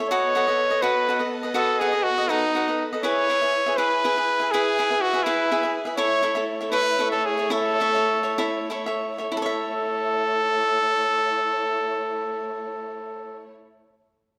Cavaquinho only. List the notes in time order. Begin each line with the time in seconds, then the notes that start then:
0.00 A4 C#5 E5
0.11 F#4 A4 B4 D#5
0.35 F#4 A4 B4 D#5
0.47 A4 B4 D#5
0.71 A4 B4 D#5
0.82 F#4 A4 B4 D#5
1.08 F#4 A4 B4 D#5
1.19 A4 B4 D#5
1.43 A4 B4 D#5
1.54 F#4 A4 B4 D#5
1.81 F#4 A4 B4 D#5
1.92 A4 B4 D#5
2.18 A4 B4 D#5
2.29 F#4 A4 B4 D#5
2.55 F#4 A4 B4 D#5
2.68 A4 B4 D#5
2.93 A4 B4 D#5
3.03 E4 G#4 B4 E5
3.29 E4 G#4 B4 E5
3.42 G#4 B4 E5
3.66 G#4 B4 E5
3.78 E4 G#4 B4 E5
4.04 E4 G#4 B4 E5
4.16 G#4 B4 E5
4.40 G#4 B4 E5
4.54 E4 G#4 B4 E5
4.79 E4 G#4 B4 E5
4.90 G#4 B4 E5
5.13 G#4 B4 E5
5.26 E4 G#4 B4 E5
5.51 E4 G#4 B4 E5
5.63 G#4 B4 E5
5.85 G#4 B4 E5
5.97 E4 A4 C#5 E5
6.23 E4 A4 C#5 E5
6.35 A4 C#5 E5
6.61 A4 C#5 E5
6.72 E4 A4 C#5 E5
6.99 E4 A4 C#5 E5
7.12 A4 C#5 E5
7.37 A4 C#5 E5
7.50 E4 A4 C#5 E5
7.80 E4 A4 C#5 E5
7.95 A4 C#5 E5
8.23 A4 C#5 E5
8.38 E4 A4 C#5 E5
8.70 E4 A4 C#5 E5
8.86 A4 C#5 E5
9.18 A4 C#5 E5
9.32 E4
9.37 A4
9.42 C#5 E5